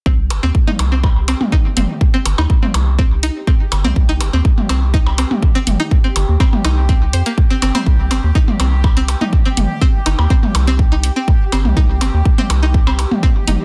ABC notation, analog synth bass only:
X:1
M:4/4
L:1/16
Q:1/4=123
K:Cm
V:1 name="Analog synth bass" clef=bass
C,,2 G,,, E,, z2 C,,4- C,, z3 G,,, z | z2 G,,, E,, z2 C,,4- C,, z3 G,,, C,, | C,,2 G,,, E,, z2 C,,4- C,, z3 G,,, z | z2 G,,, E,, z2 C,,4 F,, z3 G,,, z |
C,,2 G,,, E,, z2 C,,4- C,, z3 G,,, z | z2 G,,, E,, z2 C,,4- C,, z3 G,,, C,, | C,,2 G,,, E,, z2 C,,4- C,, z3 G,,, z |]